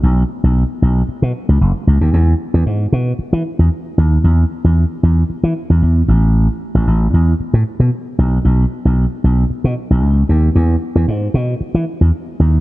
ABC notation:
X:1
M:4/4
L:1/16
Q:1/4=114
K:E
V:1 name="Slap bass" clef=bass
B,,,2 z B,,,2 z B,,,2 z B,, z C,, F,,, z C,, D,, | E,,2 z E,, G,,2 B,,2 z E, z E,, z2 D,,2 | E,,2 z E,,2 z E,,2 z E, z E,, E,,2 A,,,2- | A,,,2 z A,,, A,,,2 E,,2 z A,, z B,, z2 B,,,2 |
B,,,2 z B,,,2 z B,,,2 z B,, z B,,, C,,2 D,,2 | E,,2 z E,, G,,2 B,,2 z E, z E,, z2 D,,2 |]